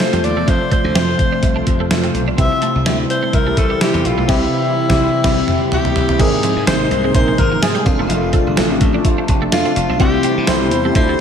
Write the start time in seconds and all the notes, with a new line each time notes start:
Already playing: C3 F3 A3 C4 F4 A4 C5
0.00 F4 A4 C5, snare, closed hi-hat, cowbell
0.13 F2 G3, closed hi-hat
0.24 D#2 D5, muted clean electric guitar stroke, closed hi-hat
0.36 E2 A3
0.47 F2 F3 C4 F4 A4 C5, kick, closed hi-hat, cowbell
0.61 muted clean electric guitar stroke
0.71 A3 C5, kick, closed hi-hat
0.84 D2
0.95 F2 C4, snare, closed hi-hat, cowbell
1.08 muted clean electric guitar stroke
1.19 kick, closed hi-hat
1.32 D4
1.43 C2, kick, closed hi-hat, cowbell
1.56 D4 F4 A4 C5
1.67 F2, muted clean electric guitar stroke, kick, closed hi-hat
1.80 A3
1.90 F2 F4 A4 C5, snare, closed hi-hat, cowbell
2.04 C4, closed hi-hat
2.14 B1, muted clean electric guitar stroke, closed hi-hat
2.28 D4
2.37 C2 C3 E3 G3 C4 E4 G4 B4 E5, kick, closed hi-hat, cowbell
2.45 C5
2.52 muted clean electric guitar stroke
2.62 A3, closed hi-hat
2.75 C2
2.86 D2 G3, snare, closed hi-hat, cowbell
2.99 muted clean electric guitar stroke
3.10 C5, closed hi-hat
3.23 A3
3.33 C2 A#4, kick, closed hi-hat, cowbell
3.46 A3 E4 G4 C5
3.57 C2 A4, muted clean electric guitar stroke, kick, closed hi-hat
3.70 G3
3.81 E4 G4 C5, snare, closed hi-hat, cowbell
3.94 E2 G3, closed hi-hat
4.04 A#1 F4, muted clean electric guitar stroke, closed hi-hat
4.18 B1 A3
4.28 C2 C3 C4 E4 G4 C5, kick, snare, crash
4.89 C2 C3 C4 E4 G4 C5, kick, snare
5.23 C2 C3 C4 E4 G4 C5, kick, snare, crash
5.48 mid tom
5.72 G4 G5, floor tom
5.85 floor tom
5.96 floor tom
6.09 floor tom
6.19 G#1 G#2 C3 G#3 A#3 C4 D#4 G#4 A#4 C5 G#5, kick, closed hi-hat, crash, cowbell
6.33 muted clean electric guitar stroke
6.43 F3 C4 D#4 A#4, closed hi-hat
6.56 G#2
6.67 G#1 G3 C4 D#4 G#4 C5 C6, snare, closed hi-hat, tambourine, cowbell
6.80 C4 D#4 G4, muted clean electric guitar stroke
6.91 C2, closed hi-hat
7.04 G#3 C4 D#4 G#4
7.14 A#1 C4 D#4 A#4 C5 C6, kick, closed hi-hat, cowbell
7.28 G#3
7.38 G#1 A#4 A#5, muted clean electric guitar stroke, kick, closed hi-hat
7.52 F3
7.62 G#2 C4 D#4 G#4 G#5, snare, closed hi-hat, tambourine, cowbell
7.75 G3, closed hi-hat
7.85 F1 C3 F3 A3 C4 D4 F4 A4 F5, muted clean electric guitar stroke, kick, closed hi-hat
7.99 E1 A3
8.09 F1 F3 F4 A4 D5, closed hi-hat, cowbell
8.22 muted clean electric guitar stroke
8.33 A3 F4 A4 C5, kick, closed hi-hat
8.47 G1
8.57 A1 C4 D4 F4 A4, snare, closed hi-hat, tambourine, cowbell
8.70 C4 E4 G4, muted clean electric guitar stroke
8.81 A1, kick, closed hi-hat
8.94 D4 F4 A4
9.04 F4 A4 C5, kick, closed hi-hat, cowbell
9.18 D4
9.28 F1, muted clean electric guitar stroke, kick, closed hi-hat
9.42 A3
9.52 F2 D4 F4 A4 F5, snare, closed hi-hat, tambourine, cowbell
9.65 C4, closed hi-hat
9.76 F1, muted clean electric guitar stroke, closed hi-hat
9.90 B1 D4
9.99 C2 C3 E3 G3 C4 E4 G4 A#4 C5 D5 G5, kick, closed hi-hat, cowbell
10.14 muted clean electric guitar stroke
10.23 C4 E4 G4 C5, closed hi-hat
10.37 C3
10.47 C2 G3 D4 F4 A4 C5 C6, snare, closed hi-hat, tambourine, cowbell
10.60 C4 E4 G4, muted clean electric guitar stroke
10.71 E2, closed hi-hat
10.85 A3 C4 E4 G4
10.95 D2 D4 F4 A4 C5 C6, kick, closed hi-hat, cowbell
11.09 A3